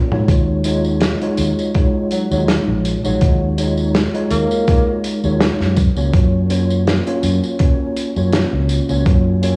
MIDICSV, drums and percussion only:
0, 0, Header, 1, 2, 480
1, 0, Start_track
1, 0, Tempo, 731707
1, 187, Time_signature, 4, 2, 24, 8
1, 6271, End_track
2, 0, Start_track
2, 0, Title_t, "Drums"
2, 78, Note_on_c, 9, 47, 71
2, 143, Note_off_c, 9, 47, 0
2, 187, Note_on_c, 9, 36, 122
2, 187, Note_on_c, 9, 42, 86
2, 189, Note_on_c, 9, 54, 30
2, 252, Note_off_c, 9, 36, 0
2, 253, Note_off_c, 9, 42, 0
2, 254, Note_off_c, 9, 54, 0
2, 421, Note_on_c, 9, 54, 67
2, 427, Note_on_c, 9, 42, 83
2, 486, Note_off_c, 9, 54, 0
2, 493, Note_off_c, 9, 42, 0
2, 555, Note_on_c, 9, 54, 35
2, 620, Note_off_c, 9, 54, 0
2, 659, Note_on_c, 9, 42, 86
2, 666, Note_on_c, 9, 38, 115
2, 668, Note_on_c, 9, 54, 27
2, 725, Note_off_c, 9, 42, 0
2, 732, Note_off_c, 9, 38, 0
2, 733, Note_off_c, 9, 54, 0
2, 797, Note_on_c, 9, 42, 52
2, 863, Note_off_c, 9, 42, 0
2, 901, Note_on_c, 9, 42, 79
2, 904, Note_on_c, 9, 54, 62
2, 967, Note_off_c, 9, 42, 0
2, 969, Note_off_c, 9, 54, 0
2, 1041, Note_on_c, 9, 54, 37
2, 1106, Note_off_c, 9, 54, 0
2, 1144, Note_on_c, 9, 42, 91
2, 1147, Note_on_c, 9, 54, 29
2, 1148, Note_on_c, 9, 36, 118
2, 1210, Note_off_c, 9, 42, 0
2, 1213, Note_off_c, 9, 36, 0
2, 1213, Note_off_c, 9, 54, 0
2, 1382, Note_on_c, 9, 42, 72
2, 1387, Note_on_c, 9, 54, 65
2, 1447, Note_off_c, 9, 42, 0
2, 1452, Note_off_c, 9, 54, 0
2, 1517, Note_on_c, 9, 54, 39
2, 1583, Note_off_c, 9, 54, 0
2, 1628, Note_on_c, 9, 38, 112
2, 1628, Note_on_c, 9, 42, 92
2, 1631, Note_on_c, 9, 54, 26
2, 1694, Note_off_c, 9, 38, 0
2, 1694, Note_off_c, 9, 42, 0
2, 1697, Note_off_c, 9, 54, 0
2, 1868, Note_on_c, 9, 42, 77
2, 1869, Note_on_c, 9, 54, 67
2, 1934, Note_off_c, 9, 42, 0
2, 1934, Note_off_c, 9, 54, 0
2, 1997, Note_on_c, 9, 54, 41
2, 2063, Note_off_c, 9, 54, 0
2, 2106, Note_on_c, 9, 42, 92
2, 2108, Note_on_c, 9, 36, 124
2, 2109, Note_on_c, 9, 54, 29
2, 2171, Note_off_c, 9, 42, 0
2, 2174, Note_off_c, 9, 36, 0
2, 2175, Note_off_c, 9, 54, 0
2, 2347, Note_on_c, 9, 42, 77
2, 2347, Note_on_c, 9, 54, 69
2, 2412, Note_off_c, 9, 42, 0
2, 2413, Note_off_c, 9, 54, 0
2, 2474, Note_on_c, 9, 54, 37
2, 2540, Note_off_c, 9, 54, 0
2, 2586, Note_on_c, 9, 54, 27
2, 2588, Note_on_c, 9, 38, 113
2, 2588, Note_on_c, 9, 42, 93
2, 2652, Note_off_c, 9, 54, 0
2, 2654, Note_off_c, 9, 38, 0
2, 2654, Note_off_c, 9, 42, 0
2, 2718, Note_on_c, 9, 42, 52
2, 2784, Note_off_c, 9, 42, 0
2, 2824, Note_on_c, 9, 42, 85
2, 2828, Note_on_c, 9, 54, 64
2, 2889, Note_off_c, 9, 42, 0
2, 2893, Note_off_c, 9, 54, 0
2, 2958, Note_on_c, 9, 54, 39
2, 3024, Note_off_c, 9, 54, 0
2, 3065, Note_on_c, 9, 54, 30
2, 3069, Note_on_c, 9, 36, 124
2, 3071, Note_on_c, 9, 42, 84
2, 3131, Note_off_c, 9, 54, 0
2, 3134, Note_off_c, 9, 36, 0
2, 3136, Note_off_c, 9, 42, 0
2, 3307, Note_on_c, 9, 42, 78
2, 3307, Note_on_c, 9, 54, 64
2, 3372, Note_off_c, 9, 54, 0
2, 3373, Note_off_c, 9, 42, 0
2, 3436, Note_on_c, 9, 54, 34
2, 3502, Note_off_c, 9, 54, 0
2, 3547, Note_on_c, 9, 38, 123
2, 3548, Note_on_c, 9, 42, 95
2, 3552, Note_on_c, 9, 54, 25
2, 3613, Note_off_c, 9, 38, 0
2, 3614, Note_off_c, 9, 42, 0
2, 3617, Note_off_c, 9, 54, 0
2, 3680, Note_on_c, 9, 38, 36
2, 3745, Note_off_c, 9, 38, 0
2, 3783, Note_on_c, 9, 54, 68
2, 3786, Note_on_c, 9, 42, 75
2, 3788, Note_on_c, 9, 36, 109
2, 3849, Note_off_c, 9, 54, 0
2, 3852, Note_off_c, 9, 42, 0
2, 3853, Note_off_c, 9, 36, 0
2, 3915, Note_on_c, 9, 54, 35
2, 3981, Note_off_c, 9, 54, 0
2, 4026, Note_on_c, 9, 42, 92
2, 4026, Note_on_c, 9, 54, 29
2, 4027, Note_on_c, 9, 36, 127
2, 4091, Note_off_c, 9, 54, 0
2, 4092, Note_off_c, 9, 42, 0
2, 4093, Note_off_c, 9, 36, 0
2, 4266, Note_on_c, 9, 54, 65
2, 4269, Note_on_c, 9, 42, 80
2, 4331, Note_off_c, 9, 54, 0
2, 4334, Note_off_c, 9, 42, 0
2, 4399, Note_on_c, 9, 54, 32
2, 4464, Note_off_c, 9, 54, 0
2, 4509, Note_on_c, 9, 42, 80
2, 4511, Note_on_c, 9, 38, 116
2, 4512, Note_on_c, 9, 54, 27
2, 4575, Note_off_c, 9, 42, 0
2, 4577, Note_off_c, 9, 38, 0
2, 4578, Note_off_c, 9, 54, 0
2, 4637, Note_on_c, 9, 42, 58
2, 4702, Note_off_c, 9, 42, 0
2, 4743, Note_on_c, 9, 54, 61
2, 4746, Note_on_c, 9, 42, 75
2, 4808, Note_off_c, 9, 54, 0
2, 4812, Note_off_c, 9, 42, 0
2, 4878, Note_on_c, 9, 54, 36
2, 4943, Note_off_c, 9, 54, 0
2, 4980, Note_on_c, 9, 42, 90
2, 4985, Note_on_c, 9, 54, 26
2, 4986, Note_on_c, 9, 36, 126
2, 5046, Note_off_c, 9, 42, 0
2, 5050, Note_off_c, 9, 54, 0
2, 5052, Note_off_c, 9, 36, 0
2, 5225, Note_on_c, 9, 42, 78
2, 5227, Note_on_c, 9, 54, 61
2, 5291, Note_off_c, 9, 42, 0
2, 5293, Note_off_c, 9, 54, 0
2, 5356, Note_on_c, 9, 54, 33
2, 5421, Note_off_c, 9, 54, 0
2, 5461, Note_on_c, 9, 54, 27
2, 5462, Note_on_c, 9, 42, 86
2, 5467, Note_on_c, 9, 38, 127
2, 5527, Note_off_c, 9, 42, 0
2, 5527, Note_off_c, 9, 54, 0
2, 5533, Note_off_c, 9, 38, 0
2, 5701, Note_on_c, 9, 54, 65
2, 5704, Note_on_c, 9, 42, 77
2, 5766, Note_off_c, 9, 54, 0
2, 5769, Note_off_c, 9, 42, 0
2, 5833, Note_on_c, 9, 54, 38
2, 5899, Note_off_c, 9, 54, 0
2, 5943, Note_on_c, 9, 54, 28
2, 5945, Note_on_c, 9, 36, 127
2, 5946, Note_on_c, 9, 42, 90
2, 6008, Note_off_c, 9, 54, 0
2, 6011, Note_off_c, 9, 36, 0
2, 6011, Note_off_c, 9, 42, 0
2, 6185, Note_on_c, 9, 54, 63
2, 6187, Note_on_c, 9, 42, 74
2, 6251, Note_off_c, 9, 54, 0
2, 6252, Note_off_c, 9, 42, 0
2, 6271, End_track
0, 0, End_of_file